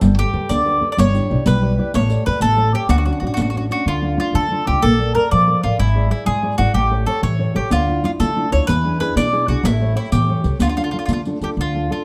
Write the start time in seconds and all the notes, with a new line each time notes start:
0.01 G1 G3, riq
0.18 G4 A4 B4, riq
0.33 D2 G4 A4 B4
0.49 D2 D3 D5, riq
0.66 G4 A4 B4
0.81 G4 A4 B4
0.92 D5
0.97 G1 G3 C#5, riq
1.13 D4 E4 G4, riq
1.29 B1 E4 G4 D5
1.46 B1 G3 B4, riq
1.62 E4 G4 D5
1.78 E4 G4 D5
1.94 A1 A3 C#5, riq
2.10 G4 A4 D5, riq
2.26 E2 G4 A4 B4 D5
2.40 A1 A3 A4, riq
2.56 G4 A4 C#5
2.73 G4 A4 C#5
2.89 D2 D3 F#4, riq
2.98 F#4
3.06 C#4 D4 F#4
3.13 F#4
3.20 A1 C#4 D4 F#4
3.27 F#4
3.34 A1 F#4, riq
3.39 A3 F#4
3.50 F#4
3.55 C#4 D4 F#4
3.70 C#4 D4 F#4, riq
3.86 D2 D3 F4
4.01 A3 D4 F4
4.17 A3 D4 F4
4.33 D3 A3 A4
4.51 A3 D4 F4
4.66 C#2 A3 D4 F4 G4
4.82 A#1 A#3 A4
4.98 A4 A#4 D5
5.15 A4 A#4 D5
5.31 A#2 F3 D5
5.47 A4 A#4 D5
5.63 A1 F4 A4 A#4 D5
5.79 G#1 G#3 E4
5.95 E4 G#4 D5
6.10 E4 G#4 D5
6.26 G#2 G#3 G#4
6.42 E4 G#4 D5
6.58 G#1 E4 F#4 G#4 D5
6.74 A1 A3 G4
6.90 G4 A4 C#5
7.06 G4 A4 C#5
7.22 A2 E3 C#5
7.39 G4 A4 C#5
7.54 A1 G4 A4 C#5
7.70 D2 D3 F4, riq
7.88 D4 E4 F4
8.03 D4 E4 F4, riq
8.20 D3 A3 A4, riq
8.36 D4 E4 F4
8.51 D2 D4 E4 F4 C#5, riq
8.67 E2 E3 B4, riq
8.85 D4 E4 G#4
9.00 D4 E4 G#4 B4, riq
9.15 B2 E3 D5, riq
9.32 D4 E4 G#4
9.48 B1 D4 E4 F#4 G#4, riq
9.63 A1 A3 E4, riq
9.80 G4 A4 C#5
9.95 E4 G4 A4 C#5, riq
10.12 A2 E3 G4, riq
10.28 G4 A4 C#5
10.44 C#2 G4 A4 C#5, riq
10.59 D2 D3 F4, riq
10.69 F4
10.77 D4 F4 A4, riq
10.84 F4
10.91 D4 F4 A4
10.99 F4
11.06 D3 A3 F4, riq
11.13 F4
11.25 D4 F4 A4, riq
11.41 D2 D4 F4 G4 A4, riq
11.57 D2 D3 F4
11.74 D4 F4 A4
11.90 D4 F4 A4